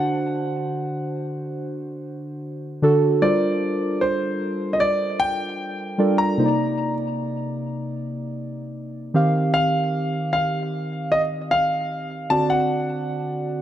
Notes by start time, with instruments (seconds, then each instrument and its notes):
Already playing: synth keys D3 D4 F#4 C5, grand piano F#5
2.82 synth keys D3 D4 F#4 A4
3.22 synth keys G3 D4 F4 A4 A#4 C5, grand piano D5
4.01 grand piano C5
4.73 grand piano D#5
4.80 grand piano D5
5.20 grand piano G5
5.98 synth keys G3 D4 F4 A4 A#4 D5
6.18 grand piano A#5
6.38 synth keys C3 A#3 D#4 C5
6.46 synth keys D5
9.14 synth keys D#3 C4 G4 F5
9.54 grand piano F5
10.33 grand piano F5
11.12 grand piano D#5
11.51 grand piano F5
12.30 synth keys D3 C4 F#4 D5, grand piano A5
12.50 grand piano F#5